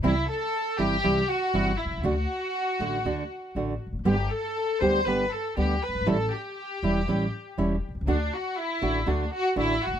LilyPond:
<<
  \new Staff \with { instrumentName = "Violin section" } { \time 4/4 \key d \mixolydian \tempo 4 = 120 e'8 a'4 g'4 fis'4 e'8 | fis'2.~ fis'8 r8 | g'8 a'4 c''8 b'8 a'8 g'8 b'8 | a'8 g'2. r8 |
d'8 fis'8 e'4 d'8 fis'8 e'8 fis'8 | }
  \new Staff \with { instrumentName = "Nylon-string guitar" } { \time 4/4 \key d \mixolydian <c e g c' e'>8 r4 <c e g c' e'>8 <c e g c' e'>8 r8 <c e g c' e'>8 r8 | <d a d' fis'>8 r4 <d a d' fis'>8 <d a d' fis'>8 r8 <d a d' fis'>8 r8 | <d g b g'>8 r4 <d g b g'>8 <d g b g'>8 r8 <d g b g'>8 r8 | <e g cis' e'>8 r4 <e g cis' e'>8 <e g cis' e'>8 r8 <e g cis' e'>8 r8 |
<d a d' fis'>8 r4 <d a d' fis'>8 <d a d' fis'>8 r8 <d a d' fis'>8 r8 | }
  \new Staff \with { instrumentName = "Upright bass" } { \clef bass \time 4/4 \key d \mixolydian c,16. r4 r32 g,,16. r32 c,16. r8 r32 g,,16. r16 b,,32 c,32 cis,32 | d,16. r4 r32 a,,16. r32 d,16. r8 r32 a,,16. r16 e,,32 f,,32 fis,,32 | g,,16. r4 r32 d,16. r32 g,,16. r8 r32 d,16. r16 fis,,32 g,,32 aes,,32 | a,,16. r4 r32 e,,16. r32 a,,16. r8 r32 e,,16. r16 b,,32 c,32 cis,32 |
d,16. r4 r32 a,,16. r32 d,16. r8 r32 a,,16. r16 e,,32 f,,32 r32 | }
>>